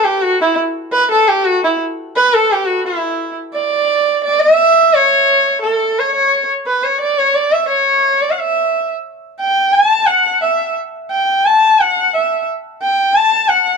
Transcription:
0.04 0.25 G4 medium
0.23 0.41 F#4 medium
0.41 0.57 E4 medium
0.92 1.09 B4 loud
1.11 1.30 A4 medium
1.28 1.48 G4 medium
1.47 1.63 F#4 medium
1.64 1.80 E4 medium
2.16 2.35 B4 loud
2.34 2.53 A4 loud
2.52 2.68 G4 medium
2.67 2.85 F#4 medium
2.85 3.34 E4 medium
3.54 4.20 D5 medium
4.24 4.42 D5 medium
4.40 4.95 E5 loud
4.94 5.61 C#5 loud
5.62 6.01 A4 medium
5.99 6.14 C#5 medium
6.15 6.47 C#5 medium
6.67 6.85 B4 medium
6.83 7.00 C#5 medium
7.01 7.20 D5 medium
7.18 7.36 C#5 medium
7.35 7.54 D5 medium
7.52 7.68 E5 medium
7.69 8.23 C#5 medium
8.22 8.32 D5 medium
8.31 8.41 F#5 medium
8.39 8.91 E5 medium
9.41 9.75 G5 medium
9.74 10.08 A5 medium
10.06 10.41 F#5 medium
10.42 10.74 E5 medium
11.11 11.47 G5 medium
11.46 11.82 A5 medium
11.80 12.14 F#5 medium
12.14 12.46 E5 medium
12.82 13.17 G5 medium
13.16 13.50 A5 medium
13.49 13.77 F#5 medium

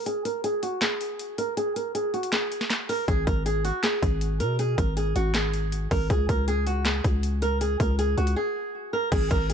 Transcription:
0.06 0.22 G#4 loud
0.06 closed hi-hat medium
0.25 0.41 A#4 medium
0.25 closed hi-hat medium
0.44 0.60 G#4 medium
0.44 closed hi-hat medium
0.63 0.79 F#4 medium
0.63 closed hi-hat medium
0.82 1.35 G#4 medium
0.82 snare loud
0.82 clap loud
0.82 closed hi-hat medium
1.01 closed hi-hat medium
1.19 closed hi-hat medium
1.38 1.55 A#4 medium
1.38 closed hi-hat medium
1.57 1.73 G#4 medium
1.57 closed hi-hat medium
1.76 1.92 A#4 medium
1.76 closed hi-hat medium
1.95 2.11 G#4 medium
1.95 closed hi-hat medium
2.14 2.30 F#4 medium
2.14 closed hi-hat soft
2.23 closed hi-hat medium
2.32 2.86 G#4 medium
2.32 snare loud
2.32 clap loud
2.32 closed hi-hat medium
2.52 closed hi-hat medium
2.61 snare medium
2.70 snare loud
2.70 clap medium
2.70 closed hi-hat medium
2.89 3.05 A#4 medium
2.89 open hi-hat medium
3.08 3.26 G#1 loud
3.08 3.24 G#4 medium
3.08 kick loud
3.08 closed hi-hat medium
3.27 3.72 G#1 loud
3.27 3.43 A#4 medium
3.27 kick loud
3.27 closed hi-hat medium
3.46 3.62 G#4 medium
3.46 closed hi-hat medium
3.65 3.81 F#4 medium
3.65 closed hi-hat medium
3.83 4.37 G#4 medium
3.83 snare loud
3.83 clap loud
3.83 closed hi-hat medium
4.03 4.42 G#1 loud
4.03 kick loud
4.03 closed hi-hat medium
4.21 closed hi-hat medium
4.40 4.76 B2 loud
4.40 4.56 A#4 medium
4.40 closed hi-hat medium
4.59 4.75 G#4 loud
4.59 closed hi-hat medium
4.78 5.14 G#1 loud
4.78 4.94 A#4 medium
4.78 kick medium
4.78 closed hi-hat medium
4.97 5.13 G#4 medium
4.97 closed hi-hat medium
5.16 5.88 G#1 loud
5.16 5.32 F#4 medium
5.16 closed hi-hat medium
5.34 5.88 G#4 medium
5.34 snare loud
5.34 clap loud
5.34 closed hi-hat medium
5.54 closed hi-hat medium
5.72 closed hi-hat medium
5.91 6.09 G#1 loud
5.91 6.07 A#4 medium
5.91 kick loud
5.91 open hi-hat medium
6.10 6.28 C#2 loud
6.10 6.26 G#4 medium
6.10 kick loud
6.10 closed hi-hat medium
6.29 7.01 C#2 loud
6.29 6.45 A#4 medium
6.29 kick medium
6.29 closed hi-hat medium
6.48 6.64 G#4 medium
6.48 closed hi-hat medium
6.67 6.83 F#4 medium
6.67 closed hi-hat medium
6.85 7.39 G#4 medium
6.85 snare loud
6.85 clap loud
6.85 closed hi-hat medium
7.04 7.77 C#2 loud
7.04 kick loud
7.04 closed hi-hat medium
7.23 closed hi-hat medium
7.42 7.58 A#4 medium
7.42 closed hi-hat medium
7.61 7.77 G#4 medium
7.61 closed hi-hat medium
7.80 8.16 C#2 loud
7.80 7.96 A#4 medium
7.80 kick medium
7.80 closed hi-hat medium
7.99 8.15 G#4 medium
7.99 closed hi-hat medium
8.18 8.36 C#2 loud
8.18 8.34 F#4 medium
8.18 closed hi-hat soft
8.27 closed hi-hat medium
8.36 8.90 G#4 medium
8.93 9.09 A#4 medium
9.12 9.30 G#1 loud
9.12 9.28 G#4 medium
9.12 kick loud
9.12 closed hi-hat medium
9.12 crash loud
9.31 9.53 G#1 loud
9.31 9.47 A#4 medium
9.31 kick loud
9.31 closed hi-hat medium
9.50 9.53 G#4 medium
9.50 closed hi-hat medium

